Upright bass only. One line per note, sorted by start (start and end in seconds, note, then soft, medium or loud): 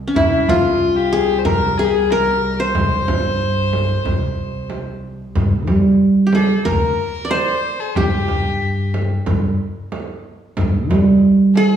0.16 0.45 C3 medium
0.49 1.35 C3 medium
1.45 2.61 C3 medium
2.74 2.89 C3 medium
3.08 3.95 G2 medium
4.05 5.21 C3 medium
5.35 5.68 G2 medium
5.68 6.55 G3 medium
6.66 6.95 D2 medium
7.97 8.26 G2 medium
8.29 9.16 G2 medium
9.27 9.56 G2 medium
10.57 10.90 G2 medium
10.90 11.77 G3 medium